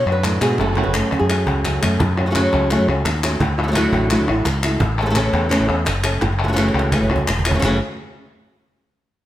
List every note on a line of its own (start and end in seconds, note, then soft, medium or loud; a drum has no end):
0.00 0.57 D3 medium
0.00 0.45 F#3 medium
0.00 0.77 A3 soft
0.00 0.12 C#5 loud
0.06 0.37 F#2 medium
0.06 0.42 F#4 soft
0.06 clap soft
0.12 0.59 B4 medium
0.23 0.41 A2 medium
0.23 0.41 D3 soft
0.23 0.41 A3 soft
0.23 0.41 B3 soft
0.23 0.40 F#4 soft
0.23 cajon slap loud
0.23 clap medium
0.41 0.58 G#2 medium
0.41 0.57 B2 medium
0.41 0.59 A3 soft
0.41 0.59 B3 soft
0.41 0.58 F#4 medium
0.41 0.59 G#4 medium
0.41 clap medium
0.58 0.82 F#1 loud
0.58 1.99 F#2 medium
0.58 0.75 C#3 medium
0.58 0.66 F#3 medium
0.58 0.67 A3 medium
0.58 0.67 C#4 medium
0.58 0.67 F#4 medium
0.58 0.83 A4 loud
0.58 cajon slap medium
0.58 clap soft
0.67 0.71 F#3 soft
0.67 0.71 A3 medium
0.67 0.71 C#4 soft
0.67 0.72 F#4 medium
0.72 0.76 F#3 medium
0.72 0.76 A3 medium
0.72 0.76 C#4 medium
0.72 0.76 F#4 medium
0.72 cajon slap medium
0.76 0.93 C#3 medium
0.76 0.94 F#3 medium
0.76 0.94 A3 medium
0.76 0.94 C#4 medium
0.76 1.11 C#4 soft
0.76 0.93 F#4 medium
0.76 clap soft
0.84 1.01 F#1 medium
0.84 0.96 B4 medium
0.93 1.80 A3 medium
0.93 1.29 A3 soft
0.93 1.29 C#4 soft
0.93 1.29 F#4 soft
0.93 1.30 A4 medium
0.93 cajon slap medium
0.93 clap medium
1.11 1.64 C#4 medium
1.11 cajon bass medium
1.11 clap soft
1.19 1.44 F#2 medium
1.19 1.65 G#4 medium
1.30 2.00 F#4 medium
1.30 muted nylon-string guitar stroke soft
1.30 clap medium
1.47 1.78 C#2 medium
1.47 cajon bass medium
1.47 clap soft
1.65 1.81 F#3 medium
1.65 1.82 A3 soft
1.65 1.98 C#4 medium
1.65 1.82 C#4 soft
1.65 1.82 F#4 soft
1.65 cajon bass medium
1.65 clap medium
1.82 1.98 F#2 medium
1.82 1.97 A3 medium
1.82 2.00 A3 soft
1.82 2.00 C#4 medium
1.82 1.99 F#4 soft
1.82 cajon bass loud
1.82 clap loud
2.00 2.47 F#2 medium
2.00 muted nylon-string guitar stroke medium
2.00 cajon bass loud
2.00 clap soft
2.17 2.26 A3 medium
2.17 2.26 C#4 medium
2.17 2.26 F#4 medium
2.17 clap soft
2.26 2.29 F#3 medium
2.26 2.30 A3 medium
2.26 2.31 C#4 medium
2.26 2.31 F#4 medium
2.31 2.34 F#3 medium
2.31 2.34 A3 medium
2.31 2.35 C#4 medium
2.31 2.35 F#4 medium
2.35 2.69 C#3 medium
2.35 2.70 F#3 medium
2.35 2.70 A3 loud
2.35 2.70 C#4 medium
2.35 2.70 F#4 loud
2.35 cajon slap loud
2.35 clap medium
2.53 2.76 C#2 medium
2.53 cajon bass medium
2.53 cajon slap soft
2.53 clap soft
2.70 2.87 C#3 medium
2.70 2.87 F#3 medium
2.70 2.87 A3 medium
2.70 2.88 C#4 loud
2.70 2.87 F#4 medium
2.70 clap medium
2.79 2.87 F#2 medium
2.88 3.03 C#2 medium
2.88 3.05 A3 medium
2.88 3.05 C#4 medium
2.88 3.05 F#4 medium
2.88 clap soft
3.05 3.36 D#2 loud
3.05 muted nylon-string guitar stroke medium
3.05 cajon slap loud
3.05 clap medium
3.23 3.41 A3 soft
3.23 3.40 C#4 medium
3.23 3.40 F#4 medium
3.23 clap loud
3.40 3.87 D2 medium
3.40 muted nylon-string guitar stroke medium
3.40 cajon bass loud
3.40 clap soft
3.58 3.63 A3 medium
3.58 3.62 E4 medium
3.58 3.63 F#4 medium
3.58 clap soft
3.63 3.67 F#3 medium
3.63 3.67 A3 medium
3.63 3.67 E4 medium
3.63 3.68 F#4 medium
3.68 3.71 F#3 medium
3.68 3.75 F#3 medium
3.68 3.72 A3 medium
3.68 3.72 E4 medium
3.68 3.72 F#4 medium
3.73 4.09 D3 loud
3.73 4.10 F#3 medium
3.73 3.76 A3 medium
3.73 4.11 A3 loud
3.73 3.76 E4 medium
3.73 3.77 F#4 medium
3.73 cajon slap loud
3.73 clap medium
3.77 4.11 E4 medium
3.77 4.11 F#4 loud
3.92 4.16 A1 loud
3.92 cajon bass loud
3.92 clap soft
4.10 4.27 D3 medium
4.10 4.28 F#3 medium
4.10 4.28 A3 medium
4.10 4.27 E4 loud
4.10 4.26 F#4 medium
4.10 clap medium
4.20 4.27 D2 medium
4.28 4.44 A1 medium
4.28 4.45 A3 medium
4.28 4.45 E4 medium
4.28 4.45 F#4 medium
4.28 clap medium
4.45 4.76 C#2 loud
4.45 muted nylon-string guitar stroke medium
4.45 cajon slap loud
4.45 clap medium
4.63 4.82 A3 soft
4.63 4.81 E4 medium
4.63 4.81 F#4 medium
4.63 clap loud
4.80 5.28 A1 loud
4.80 muted nylon-string guitar stroke medium
4.80 cajon bass loud
4.80 clap soft
4.98 5.04 E3 medium
4.98 5.05 A3 medium
4.98 clap medium
5.02 5.09 E3 medium
5.02 5.09 A3 medium
5.02 5.05 C#4 medium
5.02 5.10 C#4 medium
5.02 5.06 A4 medium
5.07 5.14 E3 medium
5.07 5.15 A3 medium
5.07 5.15 C#4 medium
5.07 5.10 A4 medium
5.11 5.48 C#3 medium
5.11 5.49 E3 medium
5.11 5.15 A4 medium
5.11 clap medium
5.16 5.49 A3 medium
5.16 5.50 C#4 loud
5.16 5.50 A4 medium
5.16 cajon slap loud
5.33 5.57 E2 medium
5.33 cajon bass medium
5.33 cajon slap soft
5.33 clap medium
5.49 5.67 C#3 medium
5.49 5.68 E3 medium
5.49 5.68 A3 medium
5.49 5.67 C#4 medium
5.49 5.66 A4 loud
5.49 clap medium
5.60 5.68 A1 medium
5.67 5.85 E2 medium
5.67 5.85 A3 medium
5.67 5.85 C#4 medium
5.67 5.85 A4 medium
5.67 clap medium
5.85 6.18 F#1 medium
5.85 muted nylon-string guitar stroke medium
5.85 cajon slap loud
5.85 clap loud
6.04 6.22 A3 soft
6.04 6.21 C#4 medium
6.04 6.21 A4 medium
6.04 clap loud
6.21 6.68 F#1 loud
6.21 muted nylon-string guitar stroke medium
6.21 cajon slap loud
6.21 clap soft
6.44 6.47 E3 medium
6.44 6.47 A3 medium
6.44 6.48 C#4 medium
6.44 6.48 F#4 medium
6.44 cajon slap medium
6.48 6.51 E3 medium
6.48 6.52 A3 medium
6.48 6.52 C#4 medium
6.48 6.53 F#4 medium
6.52 6.56 E3 medium
6.52 6.56 A3 medium
6.52 6.57 C#4 medium
6.52 6.57 F#4 medium
6.57 6.92 C#3 loud
6.57 6.92 E3 medium
6.57 6.92 A3 medium
6.57 6.92 C#4 loud
6.57 6.92 F#4 loud
6.57 cajon slap medium
6.57 clap medium
6.68 cajon slap medium
6.74 6.98 C#2 medium
6.74 clap medium
6.79 cajon slap loud
6.92 7.10 C#3 medium
6.92 7.10 E3 medium
6.92 7.10 A3 medium
6.92 7.10 C#4 medium
6.92 7.10 F#4 medium
6.92 cajon bass medium
6.92 clap medium
7.01 7.09 F#1 medium
7.01 cajon bass medium
7.09 7.25 C#2 medium
7.09 7.28 A3 soft
7.09 7.28 C#4 medium
7.09 7.27 F#4 medium
7.09 clap soft
7.16 cajon bass medium
7.28 7.59 E1 loud
7.28 muted nylon-string guitar stroke medium
7.28 clap loud
7.39 cajon bass medium
7.45 7.54 A3 soft
7.45 7.54 C#4 medium
7.45 7.55 F#4 medium
7.45 clap loud
7.51 7.58 C#3 medium
7.51 7.58 E3 medium
7.51 cajon bass loud
7.55 7.59 A3 medium
7.55 7.59 C#4 medium
7.55 7.59 F#4 medium
7.59 7.79 F#1 medium
7.59 7.63 C#3 medium
7.59 7.63 E3 medium
7.59 7.63 A3 medium
7.59 7.63 C#4 medium
7.59 7.64 F#4 medium
7.59 cajon bass medium
7.59 clap loud
7.64 7.77 F#2 medium
7.64 7.78 C#3 loud
7.64 7.78 E3 loud
7.64 7.78 A3 loud
7.64 7.78 C#4 loud
7.64 7.78 F#4 loud